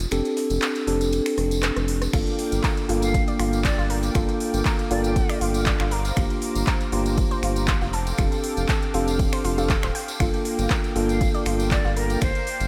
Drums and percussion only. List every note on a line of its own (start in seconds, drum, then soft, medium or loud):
0.00 closed hi-hat medium
0.00 ride soft
0.11 finger snap medium
0.11 closed hi-hat medium
0.11 ride medium
0.11 tambourine medium
0.25 closed hi-hat soft
0.25 tambourine soft
0.37 snare loud
0.37 open hi-hat loud
0.37 ride medium
0.50 closed hi-hat medium
0.50 ride soft
0.50 tambourine medium
0.62 snare loud
0.62 clap loud
0.62 closed hi-hat medium
0.62 ride medium
0.62 tambourine medium
0.75 closed hi-hat soft
0.75 tambourine soft
0.87 open hi-hat loud
0.87 ride medium
1.01 closed hi-hat medium
1.01 tambourine medium
1.13 closed hi-hat medium
1.13 ride medium
1.13 tambourine medium
1.26 finger snap medium
1.26 open hi-hat medium
1.26 tambourine soft
1.37 cross-stick medium
1.37 open hi-hat loud
1.37 ride medium
1.51 closed hi-hat medium
1.51 tambourine medium
1.62 cross-stick medium
1.62 snare loud
1.62 clap loud
1.62 closed hi-hat medium
1.62 ride medium
1.62 tambourine medium
1.76 cross-stick medium
1.76 closed hi-hat soft
1.76 tambourine soft
1.88 open hi-hat loud
1.88 ride medium
2.02 cross-stick medium
2.02 snare soft
2.02 closed hi-hat medium
2.02 tambourine medium
2.13 finger snap medium
2.13 kick loud
2.13 closed hi-hat medium
2.13 crash medium
2.13 ride medium
2.13 tambourine medium
2.27 closed hi-hat soft
2.27 tambourine soft
2.39 open hi-hat loud
2.39 ride medium
2.52 closed hi-hat medium
2.52 tambourine medium
2.64 kick loud
2.64 snare loud
2.64 clap loud
2.64 closed hi-hat medium
2.64 ride medium
2.64 tambourine medium
2.77 closed hi-hat soft
2.77 tambourine soft
2.89 open hi-hat loud
2.89 ride medium
3.02 closed hi-hat medium
3.02 tambourine medium
3.14 kick loud
3.14 closed hi-hat medium
3.14 ride medium
3.14 tambourine medium
3.28 closed hi-hat soft
3.28 tambourine soft
3.40 finger snap medium
3.40 open hi-hat loud
3.40 ride medium
3.53 closed hi-hat medium
3.53 tambourine medium
3.64 kick loud
3.64 snare loud
3.64 clap loud
3.64 closed hi-hat medium
3.64 ride medium
3.64 tambourine medium
3.78 snare medium
3.78 tambourine soft
3.90 open hi-hat loud
3.90 ride medium
4.03 closed hi-hat medium
4.03 ride soft
4.03 tambourine medium
4.15 finger snap medium
4.15 kick loud
4.15 closed hi-hat medium
4.15 ride medium
4.15 tambourine medium
4.29 closed hi-hat soft
4.29 tambourine soft
4.40 open hi-hat loud
4.40 ride medium
4.54 closed hi-hat medium
4.54 ride soft
4.54 tambourine medium
4.65 kick loud
4.65 snare loud
4.65 clap loud
4.65 closed hi-hat medium
4.65 ride medium
4.65 tambourine medium
4.79 closed hi-hat soft
4.79 tambourine soft
4.90 open hi-hat loud
4.90 ride medium
5.04 closed hi-hat medium
5.04 tambourine medium
5.16 kick loud
5.16 closed hi-hat medium
5.16 ride medium
5.16 tambourine medium
5.30 finger snap medium
5.30 open hi-hat medium
5.30 tambourine soft
5.41 open hi-hat loud
5.41 ride medium
5.54 closed hi-hat medium
5.54 tambourine medium
5.66 kick loud
5.66 snare loud
5.66 clap loud
5.66 closed hi-hat medium
5.66 ride medium
5.80 finger snap medium
5.80 clap soft
5.80 closed hi-hat soft
5.80 tambourine soft
5.91 open hi-hat loud
5.91 ride medium
6.05 snare soft
6.05 closed hi-hat medium
6.05 tambourine medium
6.16 finger snap medium
6.16 kick loud
6.16 closed hi-hat medium
6.16 ride medium
6.16 tambourine medium
6.30 closed hi-hat soft
6.30 tambourine soft
6.42 open hi-hat loud
6.42 ride medium
6.55 closed hi-hat medium
6.55 tambourine medium
6.67 kick loud
6.67 snare loud
6.67 clap loud
6.67 closed hi-hat medium
6.67 ride medium
6.80 closed hi-hat soft
6.80 tambourine soft
6.92 open hi-hat loud
6.92 ride medium
7.06 closed hi-hat medium
7.06 tambourine medium
7.17 kick loud
7.17 closed hi-hat medium
7.17 ride medium
7.17 tambourine medium
7.31 closed hi-hat soft
7.31 tambourine soft
7.43 finger snap medium
7.43 open hi-hat loud
7.43 ride medium
7.56 closed hi-hat soft
7.56 tambourine medium
7.67 kick loud
7.67 snare loud
7.67 clap loud
7.67 closed hi-hat medium
7.67 ride medium
7.67 tambourine medium
7.81 snare medium
7.81 tambourine soft
7.93 open hi-hat loud
7.93 ride medium
8.07 closed hi-hat medium
8.07 ride soft
8.07 tambourine medium
8.18 finger snap medium
8.18 kick loud
8.18 closed hi-hat medium
8.18 ride medium
8.18 tambourine medium
8.32 closed hi-hat soft
8.32 tambourine soft
8.43 open hi-hat loud
8.43 ride medium
8.57 closed hi-hat soft
8.57 ride soft
8.57 tambourine medium
8.68 kick loud
8.68 snare loud
8.68 clap loud
8.68 closed hi-hat medium
8.68 ride medium
8.68 tambourine medium
8.82 closed hi-hat soft
8.82 tambourine soft
8.94 open hi-hat loud
8.94 ride medium
9.07 snare soft
9.07 closed hi-hat medium
9.07 tambourine medium
9.19 kick loud
9.19 closed hi-hat medium
9.19 ride medium
9.19 tambourine medium
9.33 finger snap medium
9.33 open hi-hat medium
9.33 tambourine soft
9.45 open hi-hat loud
9.45 ride medium
9.58 closed hi-hat soft
9.58 tambourine medium
9.69 kick loud
9.69 snare loud
9.69 clap loud
9.69 closed hi-hat medium
9.69 ride medium
9.69 tambourine medium
9.83 finger snap medium
9.83 clap soft
9.83 closed hi-hat soft
9.83 tambourine soft
9.95 open hi-hat loud
9.95 ride medium
10.08 closed hi-hat soft
10.08 tambourine medium
10.20 finger snap medium
10.20 kick loud
10.20 closed hi-hat medium
10.20 ride loud
10.20 ride medium
10.34 closed hi-hat soft
10.34 tambourine soft
10.45 open hi-hat loud
10.45 ride medium
10.59 closed hi-hat soft
10.59 tambourine medium
10.70 kick loud
10.70 snare loud
10.70 clap loud
10.70 closed hi-hat medium
10.70 ride medium
10.70 tambourine medium
10.84 closed hi-hat soft
10.84 tambourine soft
10.96 open hi-hat loud
10.96 ride medium
11.09 closed hi-hat medium
11.09 tambourine medium
11.21 kick loud
11.21 closed hi-hat medium
11.21 ride medium
11.21 tambourine medium
11.34 closed hi-hat soft
11.34 tambourine soft
11.45 finger snap medium
11.45 open hi-hat loud
11.45 ride medium
11.60 closed hi-hat soft
11.60 tambourine medium
11.71 kick loud
11.71 snare loud
11.71 clap loud
11.71 closed hi-hat medium
11.71 ride medium
11.71 tambourine medium
11.84 snare medium
11.84 tambourine soft
11.97 open hi-hat loud
11.97 ride medium
12.10 closed hi-hat medium
12.10 ride soft
12.10 tambourine medium
12.21 finger snap medium
12.21 kick loud
12.21 closed hi-hat medium
12.21 ride medium
12.21 tambourine medium
12.35 closed hi-hat soft
12.35 tambourine soft
12.47 open hi-hat loud
12.47 ride medium
12.60 closed hi-hat medium
12.60 ride soft
12.60 tambourine medium